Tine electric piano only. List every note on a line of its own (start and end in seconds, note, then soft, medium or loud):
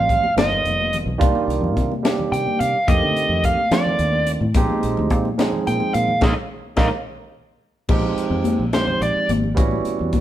0.00 0.25 F3 medium
0.00 0.26 G3 medium
0.00 0.26 A3 medium
0.00 0.26 C4 medium
0.00 0.26 F4 medium
0.36 1.10 D3 medium
0.36 1.09 D#3 medium
0.36 1.09 G3 medium
0.36 1.10 B3 medium
0.36 1.10 F4 medium
1.18 1.92 D#3 loud
1.18 1.92 G3 medium
1.18 1.92 A#3 medium
1.18 1.93 D4 medium
1.18 1.93 F4 loud
2.03 2.76 D#3 medium
2.03 2.76 G3 medium
2.03 2.77 A#3 medium
2.03 2.77 D4 medium
2.03 2.77 G4 medium
2.87 3.61 D3 medium
2.87 3.60 D#3 medium
2.87 3.61 A3 medium
2.87 3.61 C4 medium
2.87 3.61 G4 medium
3.71 4.44 D#3 medium
3.71 4.45 A3 medium
3.71 4.45 C4 medium
3.71 4.45 D4 medium
3.71 4.45 F4 medium
4.55 5.28 F3 loud
4.55 5.28 G#3 loud
4.55 5.28 C4 medium
4.55 5.29 D#4 loud
4.55 5.29 G4 loud
5.38 6.11 F3 medium
5.38 6.12 G#3 medium
5.38 6.12 C4 medium
5.38 6.12 D#4 medium
5.38 6.12 G#4 medium
6.22 6.31 G#3 loud
6.22 6.31 A#3 loud
6.22 6.31 D#4 medium
6.77 6.87 G#3 medium
6.77 6.87 A#3 loud
6.77 6.87 D#4 loud
7.89 8.62 F3 medium
7.89 8.63 G#3 medium
7.89 8.63 C4 medium
7.89 8.63 D#4 medium
7.89 8.63 G4 loud
8.73 9.46 F3 medium
8.73 9.46 G#3 medium
8.73 9.47 C4 medium
8.73 9.47 D#4 medium
8.73 9.47 G4 medium
9.55 10.21 G3 medium
9.55 10.21 B3 medium
9.55 10.21 C#4 medium
9.55 10.21 E4 medium
9.55 10.21 F#4 loud